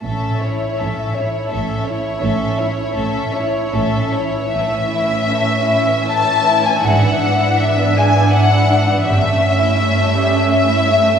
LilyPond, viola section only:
\new Staff \with { instrumentName = "Viola section" } { \time 3/4 \key a \major \tempo 4 = 81 << { cis'8 e'8 cis'8 e'8 cis'8 e'8 | cis'8 e'8 cis'8 e'8 cis'8 e'8 | e2.~ | e2. |
a2. | } \\ { r2. | r2. | cis'2. | d'2. |
cis'2. | } >> }